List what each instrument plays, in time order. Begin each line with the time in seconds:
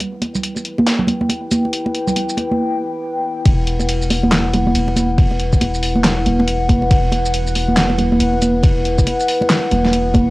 Already playing: analog synth pad E4 B4
0.00 analog synth pad G5, closed hi-hat, muted conga
0.22 closed hi-hat, muted conga
0.35 low conga, shaker
0.43 closed hi-hat
0.56 muted conga, shaker
0.65 closed hi-hat
0.78 muted conga, high conga
0.86 snare, closed hi-hat
0.99 low conga
1.07 closed hi-hat, muted conga, high conga
1.21 high conga
1.29 closed hi-hat, muted conga
1.51 closed hi-hat, high conga, shaker
1.65 muted conga
1.73 closed hi-hat
1.86 muted conga
1.94 closed hi-hat
2.07 low conga, shaker
2.16 closed hi-hat, muted conga
2.29 shaker
2.37 closed hi-hat, muted conga
2.51 high conga
3.45 sub bass E1, analog synth pad E4 B4 F#5, kick, closed hi-hat, ride
3.67 closed hi-hat
3.79 muted conga, shaker
3.89 closed hi-hat, ride
4.02 shaker
4.10 open hi-hat, muted conga
4.23 high conga
4.32 snare, clap, closed hi-hat, ride
4.53 closed hi-hat, muted conga, high conga, low conga
4.67 high conga
4.75 sub bass E1, closed hi-hat, ride
4.88 muted conga
4.96 closed hi-hat, high conga, shaker
5.18 kick, closed hi-hat, ride
5.31 muted conga
5.40 closed hi-hat
5.53 kick, shaker
5.61 sub bass E1, closed hi-hat, ride, muted conga
5.75 shaker
5.83 open hi-hat
5.96 high conga
6.04 snare, clap, closed hi-hat, ride, muted conga
6.26 sub bass E1, closed hi-hat, high conga, low conga
6.39 muted conga, high conga
6.48 closed hi-hat, ride
6.69 kick, closed hi-hat, high conga
6.82 muted conga
6.91 sub bass E1, kick, closed hi-hat, ride
7.12 closed hi-hat, muted conga
7.26 shaker
7.34 closed hi-hat, ride
7.47 shaker
7.55 open hi-hat, muted conga
7.69 high conga
7.77 snare, clap, closed hi-hat, ride
7.90 muted conga
7.98 closed hi-hat, high conga, low conga
8.12 high conga
8.20 sub bass E1, closed hi-hat, ride
8.34 muted conga
8.42 closed hi-hat, high conga, shaker
8.63 kick, closed hi-hat, ride, muted conga
8.85 closed hi-hat
8.98 kick, shaker
9.07 closed hi-hat, ride, muted conga
9.20 shaker
9.28 open hi-hat
9.41 muted conga, high conga
9.50 snare, clap, closed hi-hat, ride
9.71 sub bass E1, closed hi-hat, high conga, low conga
9.84 snare, muted conga, high conga
9.93 closed hi-hat, ride
10.14 kick, closed hi-hat, muted conga, high conga